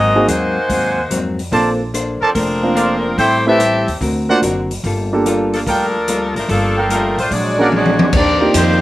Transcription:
Already playing: upright bass G#1, hollow-body jazz guitar G#2 F#3 A#3 C4, saxophone section C4 F#4 A#4 D#5, trumpet section A#4 C5 F#5 G#5
0.15 grand piano A#3 C4 D#4 F#4 G#4
0.28 upright bass D#2, hollow-body jazz guitar G#2 F#3 A#3 C4, saxophone section A#3 D#4 F#4 C5, closed hi-hat
0.69 upright bass D#2, hollow-body jazz guitar G#2 F#3 A#3 C4, kick, open hi-hat
1.11 upright bass F2, hollow-body jazz guitar G#2 F#3 A#3 C4, closed hi-hat
1.39 open hi-hat
1.52 upright bass A#1, hollow-body jazz guitar A#3 D4 A4 C5, grand piano A#3 C4 D4 F4 A4, trumpet section A#4 C5 D5 A5, kick, open hi-hat
1.94 hollow-body jazz guitar A#3 D4 A4 C5, closed hi-hat
2.21 saxophone section F3 C4 D4 A4, trumpet section A#4 C5 D5 A5, muted upright bass stroke
2.35 upright bass F1, saxophone section F3 C4 D4 A#4, hollow-body jazz guitar A#3 D4 A4 C5, kick, open hi-hat
2.63 grand piano A#3 C4 D4 F4 A#4
2.75 hollow-body jazz guitar A#3 D4 A4 C5, trumpet section A#4 C5 D5 F5, closed hi-hat
3.17 upright bass A1, hollow-body jazz guitar A2 G3 C4 E4, saxophone section A3 E4 G4 C5, trumpet section A4 C5 E5 G5, kick, open hi-hat
3.46 grand piano A3 C4 E4 G4 B4, saxophone section C4 G4 A4 E5
3.59 hollow-body jazz guitar A2 G3 C4 E4, closed hi-hat
3.87 upright bass D#2, open hi-hat
4.01 upright bass D2, hollow-body jazz guitar D3 C4 F#4 A#4, kick, open hi-hat
4.29 grand piano A#3 D4 F4 F#4 D5, trumpet section A#4 C5 D5 F#5
4.42 upright bass F#1, hollow-body jazz guitar D3 C4 F#4 A#4, closed hi-hat
4.71 open hi-hat
4.83 upright bass G1, hollow-body jazz guitar G3 A#3 F4 A4, kick, open hi-hat
5.13 grand piano A#3 D4 F4 G4 A4
5.26 hollow-body jazz guitar G3 A#3 F4 A4, closed hi-hat
5.53 saxophone section F3 A#3 D4 A4, open hi-hat
5.67 upright bass D2, saxophone section F3 D4 A4 A#4, hollow-body jazz guitar G3 A#3 F4 A4, trumpet section A4 A#4 F5 G5, kick, open hi-hat
6.08 hollow-body jazz guitar G3 A#3 F4 A4, closed hi-hat
6.35 upright bass G#1, saxophone section F3 A3 D4 A#4, open hi-hat
6.48 upright bass G1, saxophone section F3 A#3 D4 A4, hollow-body jazz guitar G3 A#3 F4 A4, kick, open hi-hat
6.77 trumpet section A4 A#4 F5 G5
6.89 saxophone section F3 A3 D4 A#4, hollow-body jazz guitar G3 A#3 F4 A4, closed hi-hat
7.17 upright bass A1, saxophone section A3 D4 F4 C5, open hi-hat
7.30 upright bass A#1, hollow-body jazz guitar A#2 F#3 G#3 D4, trombone section F#3 G#3 D4, saxophone section G#3 F#4 C#5 D5, kick, open hi-hat
7.58 trombone section D3 F#3 A#3, saxophone section G#3 D4 F#4 A#4, grand piano A#3 C#4 D4 F#4 G#4, trumpet section G#4 A#4 D5 F#5
7.72 hollow-body jazz guitar A#2 F#3 G#3 D4, trombone section F#3 G#3 D4, high tom
7.76 saxophone section G#3 D4 F#4 C#5
7.85 high tom
7.99 upright bass E2, high tom
8.13 upright bass D#2, hollow-body jazz guitar D#3 A#3 C4 G4, trombone section G3 A#3 D4, kick, crash
8.17 saxophone section C4 G4 A#4 D5
8.41 grand piano A#3 C4 D#4 F4 G4
8.54 upright bass F2, trombone section C3 G3 C4, hollow-body jazz guitar D#3 A#3 C4 G4, saxophone section A#3 D#4 G4 C5, kick, hi-hat pedal, ride

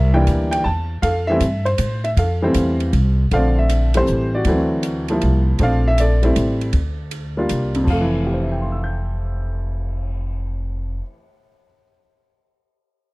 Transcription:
Already playing: upright bass C2, upright piano A#4 E5
0.14 upright piano E3 G3 A#3 D4 G5
0.27 upright bass D2, kick, hi-hat pedal, ride
0.51 upright piano G5, ride
0.64 upright bass E2, upright piano A5, kick
1.02 upright bass F2, upright piano A4 F5, kick, ride
1.27 upright piano E3 G3 A3 E5
1.31 upright piano C4
1.40 upright bass G2, kick, hi-hat pedal, ride
1.65 upright piano C5, ride
1.78 upright bass A2, kick, hi-hat pedal, ride
2.04 upright piano E5, ride
2.17 upright bass F2, upright piano A4 F5, kick, ride
2.42 upright piano E3 G3 A3 C4
2.54 upright bass E2, kick, hi-hat pedal, ride
2.80 ride
2.93 upright bass C2, kick, ride
3.31 upright bass A#1, upright piano D3 F3 A3 C4 D5 F5, kick, ride
3.59 upright piano E5
3.69 hi-hat pedal, ride
3.94 upright piano E3 G3 A3 C4 C5, ride
3.98 upright piano G4
4.07 upright bass A1, hi-hat pedal
4.35 upright piano F#4 D5
4.45 upright bass D2, upright piano E3 F#3 A3, kick, ride
4.49 upright piano C4
4.83 hi-hat pedal, ride
5.08 upright piano F3 G3 A#3 E4, ride
5.21 upright bass C2, ride
5.59 upright bass A#1, upright piano F3 A3 C4 D4, kick, ride
5.63 upright piano D5 F5
5.88 upright piano E5
5.98 upright piano A4 D5, hi-hat pedal, ride
6.23 upright piano G3 A3 C4 E4, ride
6.36 upright bass A1, hi-hat pedal, ride
6.61 ride
6.73 upright bass D2, kick, ride
7.11 ride
7.37 upright piano G3 A#3 D4 F4
7.49 upright bass C2, hi-hat pedal, ride
7.75 upright piano F2, ride
7.84 upright bass F1, upright piano F3, kick, crash
7.90 upright piano A3 F5
8.01 upright piano E3
8.12 cymbal swell
8.26 upright piano G4
8.34 upright piano C5
8.43 upright piano E5
8.52 upright piano G5
8.62 upright piano C6
8.72 upright piano E6
8.84 upright piano G6

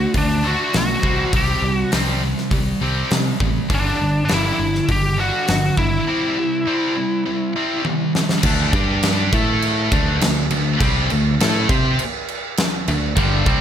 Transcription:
Already playing: distorted electric guitar D3 A3, lead electric guitar F#4
0.14 picked electric bass D2, distorted electric guitar D3 A3, lead electric guitar D4, kick, open hi-hat
0.44 distorted electric guitar D3 A3 D4, lead electric guitar F#4
0.73 picked electric bass B1, distorted electric guitar D3 A3, snare, open hi-hat
0.78 lead electric guitar F#4
1.03 picked electric bass C2, distorted electric guitar C3 G3 C4, kick
1.33 picked electric bass C2, distorted electric guitar C3 G3 C4, lead electric guitar G4, kick, open hi-hat
1.62 picked electric bass C2, distorted electric guitar C3 G3
1.76 lead electric guitar F#4
1.92 picked electric bass C2, distorted electric guitar C3 G3 C4, snare, open hi-hat
2.23 distorted electric guitar C3 G3
2.38 snare
2.51 picked electric bass C2, distorted electric guitar C3 G3, kick, open hi-hat
2.81 picked electric bass C2, distorted electric guitar C3 G3 C4
3.11 distorted electric guitar C3 G3, picked electric bass C3, snare, open hi-hat
3.40 picked electric bass A1, distorted electric guitar C3 G3, kick
3.70 picked electric bass G1, distorted electric guitar G2 D3 G3, kick, open hi-hat
3.75 lead electric guitar D4
4.00 picked electric bass G1, distorted electric guitar G2 D3
4.25 lead electric guitar D4, open hi-hat
4.29 picked electric bass G1, distorted electric guitar G2 D3 G3, snare
4.34 lead electric guitar E4
4.59 picked electric bass G1, distorted electric guitar G2 D3
4.75 snare
4.89 picked electric bass G1, distorted electric guitar G2 D3, lead electric guitar G4, kick, open hi-hat
5.18 distorted electric guitar G2 D3 G3, lead electric guitar F#4
5.48 picked electric bass G1, distorted electric guitar G2 D3, snare, open hi-hat
5.77 picked electric bass G1, distorted electric guitar G2 D3, lead electric guitar E4, kick
6.07 distorted electric guitar C3 G3 C4
6.39 distorted electric guitar C3 G3
6.67 distorted electric guitar C3 G3 C4
6.97 distorted electric guitar C3 G3
7.26 distorted electric guitar C3 G3
7.56 distorted electric guitar C3 G3 C4
7.85 distorted electric guitar C3 G3, high tom
8.15 distorted electric guitar C3 G3, snare
8.29 snare
8.43 picked electric bass D2, distorted electric guitar D3 A3 D4, kick, crash
8.73 picked electric bass G2, distorted electric guitar G3 D4 G4, kick, crash
9.03 snare, crash
9.33 picked electric bass A2, distorted electric guitar A3 E4 A4, kick, crash
9.62 crash
9.92 picked electric bass D2, distorted electric guitar D3 A3 D4, kick, crash
10.21 picked electric bass D2, distorted electric guitar D3 A3, snare, crash
10.51 picked electric bass D2, distorted electric guitar D3 A3, crash
10.80 picked electric bass C2, distorted electric guitar C3 G3 C4, kick, crash
11.10 picked electric bass D2, distorted electric guitar D3 A3, crash
11.40 picked electric bass A2, distorted electric guitar A3 E4 A4, snare, crash
11.69 picked electric bass C3, distorted electric guitar C4 G4 C5, kick, crash
11.99 crash
12.28 crash
12.57 snare, crash
12.88 picked electric bass D2, distorted electric guitar D3 A3, crash
13.17 picked electric bass G1, distorted electric guitar G2 D3 G3, kick, crash
13.46 picked electric bass C2, distorted electric guitar C3 G3 C4, kick, crash

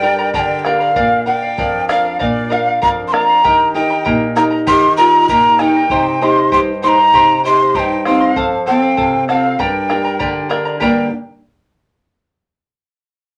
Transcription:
Already playing: nylon-string guitar G2, pan flute D5, quena G5
0.02 nylon-string guitar D4 G4 A#4, charango A#4 D5 G5 A#5
0.19 charango A#4 D5 A#5
0.33 nylon-string guitar D3, charango G4 A#4 D5 G5 A#5, quena A5, bombo low
0.39 quena G5
0.59 quena G5
0.64 nylon-string guitar D4 G4 A#4, charango A#4 D5 G5 A#5, quena F5, bombo rim
0.80 charango A#4 D5 A#5
0.96 nylon-string guitar A#2, charango A#4 D5 F5, bombo low
1.26 nylon-string guitar D4 F4 A#4, charango A#4 D5 F5, quena G5
1.42 charango D5 F5
1.58 nylon-string guitar F2, charango A#4 D5 F5, bombo low
1.89 nylon-string guitar D4 F4 A#4, charango A#4 D5 F5, quena F5, bombo rim
2.04 charango D5 F5
2.19 nylon-string guitar A#2, charango A#4 D5 F5, quena D#5, bombo low
2.26 quena D5
2.50 nylon-string guitar D4 F4 A#4, charango A#4 D5 F5, quena F5
2.65 charango D5 F5
2.82 nylon-string guitar F2, charango A#4 D5 F5, quena A#5, bombo low
3.08 quena C6
3.12 nylon-string guitar D4 F4 A#4, charango A#4 D5 F5, quena A#5, bombo rim
3.29 charango D5 F5
3.44 nylon-string guitar D#3, charango G4 A#4 D#5 G5 A#5, bombo low
3.74 nylon-string guitar D#4 G4 A#4, charango A#4 D#5 G5 A#5, quena G5
3.90 charango A#4 D#5 A#5
4.05 nylon-string guitar A#2, charango G4 A#4 D#5 G5 A#5, bombo low
4.35 nylon-string guitar D#4 G4 A#4, charango A#4 D#5 G5 A#5, quena A#5, bombo rim
4.51 charango A#4 D#5 A#5
4.67 nylon-string guitar D#3, charango G4 A#4 D#5 G5 A#5, pan flute G4, quena C6, bombo low
4.97 nylon-string guitar D#4 G4 A#4, pan flute F4, charango A#4 D#5 G5 A#5, quena A#5
5.14 charango A#4 D#5 A#5
5.29 nylon-string guitar A#2, pan flute D#4, charango G4 A#4 D#5 G5 A#5, quena A#5, bombo low
5.59 nylon-string guitar D#4 G4 A#4, pan flute D#4, charango A#4 D#5 G5 A#5, quena G5, bombo rim
5.76 charango A#4 D#5 A#5
5.90 nylon-string guitar C3, charango G4 C5 D#5 G5 C6, bombo low
6.21 nylon-string guitar D#4 G4 C5, pan flute G4, charango C5 D#5 G5 C6, quena C6
6.36 charango C5 D#5 C6
6.51 nylon-string guitar G2, charango G4 C5 D#5 G5 C6, pan flute G4, quena C6, bombo low
6.82 nylon-string guitar D#4 G4 C5, pan flute D#4, charango C5 D#5 G5 C6, quena C6
6.88 quena A#5
6.98 charango C5 D#5 C6
7.13 nylon-string guitar C3, charango G4 C5 D#5 G5 C6, bombo low
7.44 nylon-string guitar D#4 G4 C5, pan flute G4, charango C5 D#5 G5 C6, quena C6
7.60 charango C5 D#5 C6
7.74 nylon-string guitar G2, pan flute D#4, charango G4 C5 D#5 G5 C6, quena A5, bombo low
7.79 quena G5
8.05 pan flute C4, nylon-string guitar D#4 G4 C5, charango C5 D#5 G5 C6, quena F5, bombo rim
8.20 charango C5 D#5 C6
8.36 nylon-string guitar F2, charango A4 C5 F5, bombo low
8.66 pan flute C4, nylon-string guitar F4 A4 C5, charango A4 C5 F5, quena G5
8.82 charango C5 F5
8.97 nylon-string guitar C3, charango A4 C5 F5, bombo low
9.28 pan flute C4, nylon-string guitar F4 A4 C5, charango A4 C5 F5, quena F#5, bombo rim
9.32 quena F5
9.43 charango C5 F5
9.59 nylon-string guitar G2, pan flute D4, charango G4 A#4 D5 G5 A#5, quena G5, bombo low
9.89 nylon-string guitar D4 G4 A#4, charango A#4 D5 G5 A#5, bombo rim
10.04 charango A#4 D5 A#5
10.19 nylon-string guitar D3, charango G4 A#4 D5 G5 A#5, bombo low
10.49 nylon-string guitar D4 G4 A#4, charango A#4 D5 G5 A#5, bombo rim
10.65 charango A#4 D5 A#5
10.80 nylon-string guitar G2 D3 A#3 D4 G4 D5, pan flute D4, charango G4 A#4 D5 G5 A#5, quena G5, bombo low

